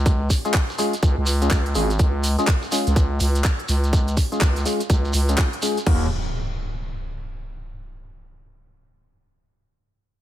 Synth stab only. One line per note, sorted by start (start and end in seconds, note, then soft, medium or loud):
0.45 0.55 G#3 medium
0.45 0.55 C#4 medium
0.45 0.55 F4 medium
0.45 0.55 G#4 medium
0.78 0.94 G#3 medium
0.78 0.94 C#4 medium
0.78 0.94 F4 medium
0.78 0.94 G#4 loud
1.42 1.62 G#3 medium
1.42 1.62 C#4 medium
1.42 1.62 F4 medium
1.42 1.62 G#4 medium
1.75 1.91 G#3 medium
1.75 1.91 C#4 medium
1.75 1.91 F4 medium
1.75 1.91 G#4 medium
2.39 2.49 G#3 medium
2.39 2.49 C#4 medium
2.39 2.49 F4 medium
2.39 2.49 G#4 loud
2.72 2.94 G#3 medium
2.72 2.94 C#4 medium
2.72 2.94 F4 medium
2.72 2.94 G#4 loud
4.32 4.42 G#3 medium
4.32 4.42 C#4 medium
4.32 4.42 F4 medium
4.32 4.42 G#4 loud
4.65 4.81 G#3 medium
4.65 4.81 C#4 medium
4.65 4.81 F4 medium
4.65 4.81 G#4 medium
5.29 5.49 G#3 medium
5.29 5.49 C#4 medium
5.29 5.49 F4 medium
5.29 5.49 G#4 medium
5.62 5.78 G#3 medium
5.62 5.78 C#4 medium
5.62 5.78 F4 medium
5.62 5.78 G#4 loud
5.87 6.06 A#3 medium
5.87 6.06 D#4 medium
5.87 6.06 F#4 medium
5.87 6.06 A#4 loud